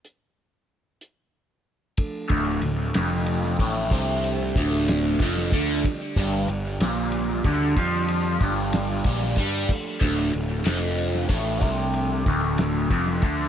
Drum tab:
CC |------|------|------|------|
RD |------|xxxxxx|xxxxxx|xxxxxx|
HH |x--x--|------|------|------|
SD |------|---o--|---o--|---o--|
BD |------|oo---o|o-o-oo|oo---o|

CC |------|x-----|------|
RD |xxxxxx|-xxxxx|xxxxxx|
HH |------|------|------|
SD |---o--|---o--|---o--|
BD |o-o-oo|oo---o|o-o-oo|